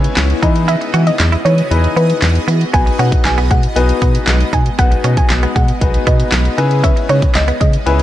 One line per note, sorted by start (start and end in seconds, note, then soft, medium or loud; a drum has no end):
0.00 0.41 C#3 medium
0.00 0.39 G#3 medium
0.00 0.41 B3 medium
0.00 8.03 B3 medium
0.00 0.41 C#4 medium
0.00 0.41 E4 medium
0.00 0.41 G#4 medium
0.00 0.42 C#5 loud
0.00 6.54 D#5 medium
0.04 closed hi-hat medium
0.17 0.34 C#2 loud
0.17 snare loud
0.17 clap loud
0.17 closed hi-hat loud
0.30 closed hi-hat medium
0.42 0.76 E3 medium
0.42 2.71 E3 medium
0.42 1.25 B3 medium
0.42 1.25 D#4 medium
0.42 0.52 D#4 medium
0.42 1.25 E4 medium
0.42 2.71 F#4 medium
0.42 1.25 G#4 medium
0.42 2.71 G#4 medium
0.42 1.25 B4 medium
0.42 0.53 D#5 medium
0.42 kick medium
0.42 closed hi-hat medium
0.56 closed hi-hat medium
0.68 0.78 E4 medium
0.68 0.88 E5 loud
0.68 closed hi-hat loud
0.81 muted clean electric guitar stroke soft
0.81 closed hi-hat soft
0.94 1.11 E3 loud
0.94 1.03 F#4 medium
0.94 closed hi-hat medium
1.07 1.17 D#5 medium
1.07 closed hi-hat medium
1.20 1.36 E2 loud
1.20 muted clean electric guitar stroke soft
1.20 snare medium
1.20 clap loud
1.20 closed hi-hat medium
1.32 1.42 E4 medium
1.32 closed hi-hat soft
1.45 1.62 E3 loud
1.45 1.55 D#4 medium
1.45 1.65 C#5 medium
1.45 closed hi-hat medium
1.58 closed hi-hat medium
1.71 1.88 E2 loud
1.71 2.47 B3 medium
1.71 2.47 D#4 medium
1.71 2.47 E4 medium
1.71 2.47 G#4 medium
1.71 2.47 B4 medium
1.71 closed hi-hat loud
1.84 closed hi-hat medium
1.96 2.13 E3 loud
1.96 2.06 B3 medium
1.96 2.17 B4 medium
1.96 closed hi-hat medium
2.10 closed hi-hat medium
2.22 2.39 E2 loud
2.22 snare loud
2.22 clap loud
2.22 closed hi-hat loud
2.35 closed hi-hat soft
2.48 2.64 E3 loud
2.48 2.57 B3 medium
2.48 closed hi-hat medium
2.61 closed hi-hat medium
2.73 2.90 B1 loud
2.73 8.03 G#3 medium
2.73 3.49 B3 medium
2.73 2.83 B3 medium
2.73 3.49 D#4 medium
2.73 3.49 F#4 medium
2.73 3.49 G#4 medium
2.73 3.49 B4 medium
2.73 2.94 G#5 loud
2.73 kick loud
2.73 closed hi-hat medium
2.86 muted clean electric guitar stroke soft
2.86 closed hi-hat soft
2.99 3.16 B2 loud
2.99 3.09 C#4 medium
2.99 3.19 F#5 medium
2.99 closed hi-hat medium
3.12 kick medium
3.12 closed hi-hat medium
3.25 3.52 B1 loud
3.25 3.45 G#5 medium
3.25 muted clean electric guitar stroke soft
3.25 snare medium
3.25 clap loud
3.25 closed hi-hat medium
3.38 3.47 B3 medium
3.38 closed hi-hat medium
3.51 3.67 B2 loud
3.51 3.60 G#3 medium
3.51 3.61 F#5 medium
3.51 kick loud
3.51 closed hi-hat medium
3.63 closed hi-hat medium
3.76 3.93 B1 loud
3.76 4.52 B3 medium
3.76 4.52 D#4 medium
3.76 4.52 F#4 medium
3.76 4.52 G#4 medium
3.76 4.52 B4 loud
3.76 closed hi-hat medium
3.89 closed hi-hat medium
4.02 4.18 B2 loud
4.02 4.11 B3 medium
4.02 kick loud
4.02 closed hi-hat medium
4.15 closed hi-hat medium
4.27 4.44 B1 loud
4.27 snare loud
4.27 clap loud
4.27 closed hi-hat loud
4.40 closed hi-hat soft
4.53 4.70 B2 loud
4.53 4.62 D#4 medium
4.53 4.63 G#5 medium
4.53 kick medium
4.53 closed hi-hat medium
4.66 closed hi-hat medium
4.78 4.95 B1 loud
4.78 5.54 B3 medium
4.78 4.88 B3 medium
4.78 5.54 D#4 medium
4.78 5.54 F#4 medium
4.78 5.54 G#4 medium
4.78 5.55 B4 medium
4.78 4.99 F#5 loud
4.78 kick loud
4.78 closed hi-hat loud
4.91 muted clean electric guitar stroke soft
4.91 closed hi-hat soft
5.04 5.21 B2 loud
5.04 5.14 C#4 loud
5.04 closed hi-hat medium
5.17 5.27 G#5 medium
5.17 kick medium
5.17 closed hi-hat medium
5.30 5.46 B1 loud
5.30 muted clean electric guitar stroke soft
5.30 snare medium
5.30 clap loud
5.30 closed hi-hat medium
5.43 5.52 B3 medium
5.43 closed hi-hat medium
5.56 5.72 B2 loud
5.56 5.65 G#3 medium
5.56 5.76 F#5 medium
5.56 kick loud
5.56 closed hi-hat medium
5.68 closed hi-hat medium
5.81 5.98 B1 loud
5.81 6.56 B3 medium
5.81 6.57 D#4 medium
5.81 6.57 F#4 medium
5.81 6.57 G#4 medium
5.81 6.57 B4 medium
5.81 kick medium
5.81 closed hi-hat loud
5.94 closed hi-hat medium
6.07 6.24 B2 loud
6.07 6.16 B3 medium
6.07 6.27 D#5 medium
6.07 kick loud
6.07 closed hi-hat medium
6.20 closed hi-hat medium
6.32 6.49 B1 loud
6.32 snare loud
6.32 clap loud
6.32 closed hi-hat loud
6.45 closed hi-hat medium
6.58 6.91 C#3 loud
6.58 8.03 C#3 medium
6.58 7.40 B3 loud
6.58 7.40 C#4 medium
6.58 6.68 D#4 medium
6.58 7.40 E4 medium
6.58 8.03 E4 medium
6.58 7.40 G#4 medium
6.58 7.40 B4 loud
6.58 8.03 D#5 medium
6.58 closed hi-hat medium
6.71 closed hi-hat medium
6.84 6.93 C#4 medium
6.84 7.04 E5 loud
6.84 kick loud
6.84 closed hi-hat loud
6.96 muted clean electric guitar stroke soft
6.96 closed hi-hat soft
7.09 7.26 C#3 loud
7.09 7.19 D#4 medium
7.09 7.30 C#5 medium
7.09 closed hi-hat medium
7.22 kick loud
7.22 closed hi-hat medium
7.35 7.52 C#2 loud
7.35 7.55 D#5 loud
7.35 muted clean electric guitar stroke soft
7.35 snare loud
7.35 clap loud
7.35 closed hi-hat medium
7.48 7.57 B3 medium
7.48 closed hi-hat medium
7.61 7.77 C#3 loud
7.61 7.70 G#3 medium
7.61 7.71 D#5 medium
7.61 kick loud
7.61 closed hi-hat medium
7.73 closed hi-hat medium
7.86 8.03 C#2 loud
7.86 8.03 B3 loud
7.86 8.03 C#4 medium
7.86 8.03 E4 medium
7.86 8.03 G#4 medium
7.86 8.03 B4 loud
7.86 closed hi-hat loud
7.99 closed hi-hat medium